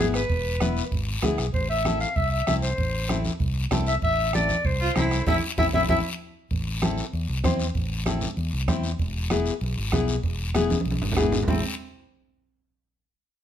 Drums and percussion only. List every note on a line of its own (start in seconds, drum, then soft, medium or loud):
0.14 bombo rim medium
0.14 short guiro medium
0.30 bombo low medium
0.30 long guiro medium
0.60 bombo rim medium
0.60 high conga medium
0.60 short guiro medium
0.77 short guiro medium
0.92 bombo low medium
0.92 long guiro medium
1.22 bombo rim medium
1.22 high conga medium
1.22 low conga medium
1.22 short guiro medium
1.38 bombo rim medium
1.38 short guiro medium
1.54 bombo low medium
1.54 long guiro medium
1.85 bombo rim medium
1.85 high conga medium
1.85 short guiro medium
2.00 short guiro medium
2.16 bombo low medium
2.16 long guiro medium
2.47 bombo rim medium
2.47 high conga medium
2.47 short guiro medium
2.62 short guiro medium
2.78 bombo low medium
2.78 long guiro medium
3.09 bombo rim medium
3.09 high conga medium
3.09 short guiro medium
3.25 high conga medium
3.25 short guiro medium
3.40 bombo low medium
3.40 long guiro medium
3.71 bombo rim medium
3.71 high conga medium
3.71 low conga medium
3.71 short guiro medium
3.87 short guiro medium
4.02 bombo low medium
4.02 long guiro medium
4.33 bombo rim medium
4.33 high conga medium
4.33 short guiro medium
4.49 high conga medium
4.49 short guiro medium
4.65 bombo low medium
4.65 long guiro medium
4.96 bombo rim medium
4.96 high conga medium
4.96 short guiro medium
5.11 bombo rim medium
5.11 short guiro medium
5.26 bombo low loud
5.26 high conga loud
5.26 long guiro loud
5.58 bombo low loud
5.58 high conga medium
5.58 long guiro loud
5.73 bombo low loud
5.73 high conga medium
5.73 long guiro loud
5.89 bombo low medium
5.89 high conga loud
5.89 long guiro medium
6.51 bombo low medium
6.51 high conga soft
6.51 long guiro medium
6.82 bombo rim medium
6.82 high conga medium
6.82 short guiro medium
6.98 short guiro medium
7.13 high conga soft
7.13 long guiro medium
7.44 bombo low medium
7.44 bombo rim medium
7.44 high conga medium
7.44 short guiro medium
7.60 short guiro medium
7.75 bombo low medium
7.75 high conga soft
7.75 long guiro medium
8.06 bombo rim medium
8.06 high conga medium
8.06 short guiro medium
8.21 low conga medium
8.21 short guiro medium
8.37 high conga soft
8.37 long guiro medium
8.68 bombo low medium
8.68 bombo rim medium
8.68 high conga medium
8.68 low conga medium
8.68 short guiro medium
8.83 short guiro medium
8.99 bombo low medium
8.99 high conga soft
8.99 long guiro medium
9.30 bombo rim medium
9.30 high conga medium
9.30 short guiro medium
9.46 short guiro medium
9.61 high conga soft
9.61 long guiro medium
9.92 bombo low medium
9.92 bombo rim medium
9.92 high conga medium
9.92 short guiro medium
10.08 short guiro medium
10.23 bombo low medium
10.23 high conga soft
10.23 long guiro medium
10.55 bombo rim medium
10.55 high conga medium
10.55 short guiro medium
10.70 high conga loud
10.70 short guiro medium
10.80 high conga medium
10.85 long guiro medium
10.91 high conga medium
11.02 low conga medium
11.12 low conga loud
11.17 bombo low medium
11.17 bombo rim medium
11.17 short guiro medium
11.22 low conga loud
11.32 low conga loud
11.32 short guiro medium
11.43 low conga medium
11.48 bombo low loud
11.48 low conga loud
11.48 long guiro loud